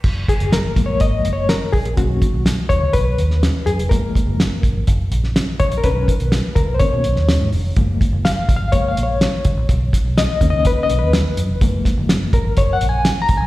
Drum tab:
CC |x---------------|----------------|----------------|----------------|
HH |--xxx-x-x-x-x-ox|x-x-x-x-x-x-x-xx|x-x-x-x-x-x-x-xx|x-xxx-x-x-x-x-o-|
SD |----o-------o---|----o------oo---|----o------oo---|----o------oo---|
BD |o-o---o-o-----o-|o-o---o-o-------|o-o---o-o-----o-|o-o---o-o-------|

CC |----------------|----------------|----------------|
HH |x-x-x-x-x-x-x-x-|x-x-x-x-x-x-x-x-|x-x-x-x-x-x-x-x-|
SD |----o-------o---|--o-o-------o---|--o-o-------o---|
BD |o-o---o-o-----o-|o-o---o-o-------|o-o---o-o-----o-|